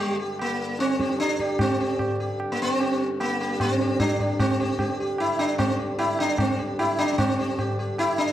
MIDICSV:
0, 0, Header, 1, 4, 480
1, 0, Start_track
1, 0, Tempo, 399467
1, 1919, Time_signature, 7, 2, 24, 8
1, 10002, End_track
2, 0, Start_track
2, 0, Title_t, "Sitar"
2, 0, Program_c, 0, 104
2, 0, Note_on_c, 0, 55, 83
2, 0, Note_on_c, 0, 67, 40
2, 195, Note_off_c, 0, 55, 0
2, 215, Note_off_c, 0, 67, 0
2, 235, Note_on_c, 0, 67, 35
2, 456, Note_off_c, 0, 67, 0
2, 497, Note_on_c, 0, 58, 75
2, 957, Note_off_c, 0, 58, 0
2, 962, Note_on_c, 0, 60, 91
2, 1203, Note_on_c, 0, 67, 39
2, 1424, Note_off_c, 0, 67, 0
2, 1434, Note_off_c, 0, 60, 0
2, 1439, Note_on_c, 0, 62, 96
2, 1682, Note_on_c, 0, 67, 41
2, 1904, Note_off_c, 0, 67, 0
2, 1930, Note_off_c, 0, 62, 0
2, 1934, Note_on_c, 0, 60, 84
2, 2167, Note_on_c, 0, 67, 39
2, 2388, Note_off_c, 0, 67, 0
2, 2602, Note_off_c, 0, 60, 0
2, 2644, Note_on_c, 0, 67, 35
2, 2867, Note_off_c, 0, 67, 0
2, 3027, Note_on_c, 0, 58, 67
2, 3139, Note_off_c, 0, 58, 0
2, 3146, Note_on_c, 0, 60, 81
2, 3361, Note_on_c, 0, 67, 37
2, 3587, Note_off_c, 0, 67, 0
2, 3696, Note_off_c, 0, 60, 0
2, 3852, Note_on_c, 0, 58, 82
2, 4093, Note_on_c, 0, 67, 39
2, 4314, Note_off_c, 0, 67, 0
2, 4330, Note_off_c, 0, 58, 0
2, 4334, Note_on_c, 0, 60, 86
2, 4579, Note_on_c, 0, 67, 40
2, 4797, Note_off_c, 0, 67, 0
2, 4798, Note_off_c, 0, 60, 0
2, 4803, Note_on_c, 0, 62, 94
2, 5047, Note_on_c, 0, 67, 41
2, 5270, Note_off_c, 0, 67, 0
2, 5283, Note_off_c, 0, 62, 0
2, 5288, Note_on_c, 0, 60, 80
2, 5525, Note_on_c, 0, 67, 39
2, 5749, Note_off_c, 0, 67, 0
2, 5767, Note_on_c, 0, 67, 39
2, 5959, Note_off_c, 0, 60, 0
2, 5990, Note_off_c, 0, 67, 0
2, 6010, Note_on_c, 0, 67, 35
2, 6231, Note_off_c, 0, 67, 0
2, 6251, Note_on_c, 0, 64, 92
2, 6477, Note_on_c, 0, 62, 83
2, 6495, Note_off_c, 0, 64, 0
2, 6703, Note_off_c, 0, 62, 0
2, 6708, Note_on_c, 0, 60, 69
2, 6938, Note_off_c, 0, 60, 0
2, 6956, Note_on_c, 0, 67, 37
2, 7182, Note_off_c, 0, 67, 0
2, 7192, Note_on_c, 0, 64, 88
2, 7419, Note_off_c, 0, 64, 0
2, 7450, Note_on_c, 0, 62, 91
2, 7687, Note_off_c, 0, 62, 0
2, 7692, Note_on_c, 0, 60, 71
2, 7908, Note_off_c, 0, 60, 0
2, 7913, Note_on_c, 0, 67, 37
2, 8137, Note_off_c, 0, 67, 0
2, 8159, Note_on_c, 0, 64, 90
2, 8394, Note_on_c, 0, 62, 93
2, 8404, Note_off_c, 0, 64, 0
2, 8549, Note_off_c, 0, 62, 0
2, 8564, Note_on_c, 0, 62, 57
2, 8623, Note_off_c, 0, 62, 0
2, 8628, Note_on_c, 0, 60, 73
2, 8884, Note_on_c, 0, 67, 39
2, 9099, Note_off_c, 0, 67, 0
2, 9115, Note_on_c, 0, 67, 35
2, 9296, Note_off_c, 0, 60, 0
2, 9333, Note_off_c, 0, 67, 0
2, 9361, Note_on_c, 0, 67, 33
2, 9576, Note_off_c, 0, 67, 0
2, 9600, Note_on_c, 0, 64, 94
2, 9830, Note_on_c, 0, 62, 86
2, 9837, Note_off_c, 0, 64, 0
2, 10002, Note_off_c, 0, 62, 0
2, 10002, End_track
3, 0, Start_track
3, 0, Title_t, "Harmonium"
3, 0, Program_c, 1, 20
3, 0, Note_on_c, 1, 43, 69
3, 0, Note_on_c, 1, 50, 71
3, 8616, Note_off_c, 1, 50, 0
3, 8619, Note_off_c, 1, 43, 0
3, 8634, Note_on_c, 1, 50, 72
3, 8637, Note_on_c, 1, 43, 72
3, 10002, Note_off_c, 1, 43, 0
3, 10002, Note_off_c, 1, 50, 0
3, 10002, End_track
4, 0, Start_track
4, 0, Title_t, "Tabla"
4, 473, Note_on_c, 9, 60, 77
4, 593, Note_off_c, 9, 60, 0
4, 950, Note_on_c, 9, 62, 71
4, 1070, Note_off_c, 9, 62, 0
4, 1076, Note_on_c, 9, 62, 58
4, 1196, Note_off_c, 9, 62, 0
4, 1196, Note_on_c, 9, 37, 58
4, 1312, Note_on_c, 9, 62, 60
4, 1316, Note_off_c, 9, 37, 0
4, 1427, Note_off_c, 9, 62, 0
4, 1427, Note_on_c, 9, 62, 74
4, 1547, Note_off_c, 9, 62, 0
4, 1550, Note_on_c, 9, 62, 65
4, 1670, Note_off_c, 9, 62, 0
4, 1675, Note_on_c, 9, 37, 57
4, 1795, Note_off_c, 9, 37, 0
4, 1797, Note_on_c, 9, 62, 56
4, 1911, Note_on_c, 9, 60, 103
4, 1911, Note_on_c, 9, 64, 90
4, 1917, Note_off_c, 9, 62, 0
4, 2031, Note_off_c, 9, 60, 0
4, 2031, Note_off_c, 9, 64, 0
4, 2394, Note_on_c, 9, 60, 76
4, 2394, Note_on_c, 9, 64, 68
4, 2515, Note_off_c, 9, 60, 0
4, 2515, Note_off_c, 9, 64, 0
4, 2882, Note_on_c, 9, 60, 76
4, 3002, Note_off_c, 9, 60, 0
4, 3367, Note_on_c, 9, 60, 74
4, 3488, Note_off_c, 9, 60, 0
4, 3848, Note_on_c, 9, 60, 77
4, 3968, Note_off_c, 9, 60, 0
4, 4325, Note_on_c, 9, 60, 76
4, 4325, Note_on_c, 9, 64, 68
4, 4445, Note_off_c, 9, 60, 0
4, 4445, Note_off_c, 9, 64, 0
4, 4565, Note_on_c, 9, 62, 58
4, 4685, Note_off_c, 9, 62, 0
4, 4803, Note_on_c, 9, 60, 78
4, 4803, Note_on_c, 9, 64, 76
4, 4923, Note_off_c, 9, 60, 0
4, 4923, Note_off_c, 9, 64, 0
4, 5042, Note_on_c, 9, 64, 54
4, 5162, Note_off_c, 9, 64, 0
4, 5282, Note_on_c, 9, 60, 103
4, 5282, Note_on_c, 9, 64, 96
4, 5402, Note_off_c, 9, 60, 0
4, 5402, Note_off_c, 9, 64, 0
4, 5754, Note_on_c, 9, 60, 75
4, 5754, Note_on_c, 9, 64, 65
4, 5874, Note_off_c, 9, 60, 0
4, 5874, Note_off_c, 9, 64, 0
4, 6229, Note_on_c, 9, 60, 77
4, 6349, Note_off_c, 9, 60, 0
4, 6476, Note_on_c, 9, 60, 74
4, 6596, Note_off_c, 9, 60, 0
4, 6716, Note_on_c, 9, 60, 93
4, 6716, Note_on_c, 9, 64, 79
4, 6836, Note_off_c, 9, 60, 0
4, 6836, Note_off_c, 9, 64, 0
4, 7199, Note_on_c, 9, 60, 74
4, 7319, Note_off_c, 9, 60, 0
4, 7436, Note_on_c, 9, 60, 73
4, 7556, Note_off_c, 9, 60, 0
4, 7670, Note_on_c, 9, 60, 93
4, 7670, Note_on_c, 9, 64, 82
4, 7791, Note_off_c, 9, 60, 0
4, 7791, Note_off_c, 9, 64, 0
4, 8161, Note_on_c, 9, 60, 79
4, 8281, Note_off_c, 9, 60, 0
4, 8398, Note_on_c, 9, 60, 78
4, 8518, Note_off_c, 9, 60, 0
4, 8633, Note_on_c, 9, 60, 91
4, 8633, Note_on_c, 9, 64, 89
4, 8753, Note_off_c, 9, 60, 0
4, 8753, Note_off_c, 9, 64, 0
4, 9116, Note_on_c, 9, 60, 69
4, 9116, Note_on_c, 9, 64, 66
4, 9236, Note_off_c, 9, 60, 0
4, 9236, Note_off_c, 9, 64, 0
4, 9594, Note_on_c, 9, 60, 77
4, 9714, Note_off_c, 9, 60, 0
4, 10002, End_track
0, 0, End_of_file